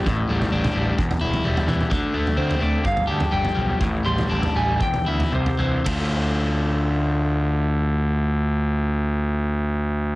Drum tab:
RD |----------------|----------------|----------------|x---------------|
T2 |-----o--------oo|----------------|----------------|----------------|
FT |o--o-o---o-o-o--|o--o-o---o-o-o--|o--o-o---o-o-o--|----------------|
BD |o-------o-------|o-------o-------|o-------o-------|o---------------|

RD |----------------|
T2 |----------------|
FT |----------------|
BD |----------------|